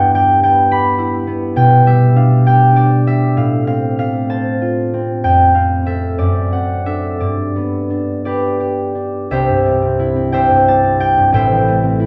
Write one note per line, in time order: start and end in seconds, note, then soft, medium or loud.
0.00 1.59 G2 medium
0.00 0.13 G3 soft
0.00 0.43 B3 medium
0.00 0.97 E4 soft
0.00 0.70 G4 medium
0.00 1.59 E5 medium
0.00 0.13 G5 loud
0.14 1.85 G3 medium
0.14 0.42 G5 loud
0.43 1.26 B3 medium
0.43 1.55 G5 loud
0.71 2.45 G4 medium
0.71 3.38 B5 loud
0.98 1.59 E4 medium
1.27 3.38 B3 medium
1.56 3.38 B2 medium
1.56 2.46 G5 loud
1.86 3.06 G3 medium
1.86 2.37 E5 loud
2.16 2.75 D4 medium
2.16 2.67 F5 medium
2.46 3.39 G4 medium
2.46 3.39 G5 loud
2.76 3.39 D4 medium
2.76 3.39 D5 medium
3.07 3.39 G3 medium
3.07 3.58 E5 loud
3.37 5.26 A2 medium
3.37 3.66 F5 medium
3.67 4.92 C4 medium
3.67 3.97 F5 loud
3.99 7.23 A3 medium
3.99 5.53 F5 loud
4.29 7.23 C5 medium
4.29 7.23 A5 loud
4.62 6.21 F4 medium
4.94 5.53 C4 medium
5.24 6.21 F2 medium
5.24 5.76 G5 loud
5.54 5.85 C4 medium
5.54 6.21 F5 medium
5.86 6.51 C4 soft
5.86 6.85 A4 medium
5.86 6.41 E5 medium
6.18 7.22 F#2 medium
6.18 7.19 D5 medium
6.52 7.23 C4 soft
6.52 7.23 F#5 medium
6.86 7.89 D4 soft
6.86 7.23 A4 soft
6.86 7.45 E5 medium
7.20 9.34 G2 medium
7.20 8.24 D5 medium
7.56 9.34 B3 soft
7.90 8.94 D4 soft
8.25 8.59 G4 medium
8.25 9.34 B4 medium
8.25 9.33 D5 medium
8.60 9.31 G4 soft
8.95 9.33 D4 soft
9.31 11.36 C2 medium
9.31 12.06 G4 medium
9.31 10.33 C5 medium
9.31 10.33 E5 loud
9.49 10.49 G2 medium
9.66 10.32 G3 medium
9.82 10.15 C4 medium
9.99 11.99 E4 medium
10.16 10.83 C4 medium
10.32 10.67 G3 medium
10.32 11.33 C5 medium
10.32 11.34 E5 medium
10.32 10.99 G5 loud
10.50 11.16 G2 medium
10.68 10.99 G3 medium
10.68 11.24 A5 loud
10.84 11.82 C4 medium
11.00 12.06 G3 medium
11.00 11.32 G5 loud
11.17 11.36 G2 medium
11.32 12.06 A1 medium
11.32 12.06 A2 medium
11.32 12.06 C5 medium
11.32 12.06 E5 medium
11.32 12.06 G5 loud
11.52 12.06 E3 medium
11.68 12.06 A3 medium
11.83 12.06 C4 medium
12.00 12.06 E4 medium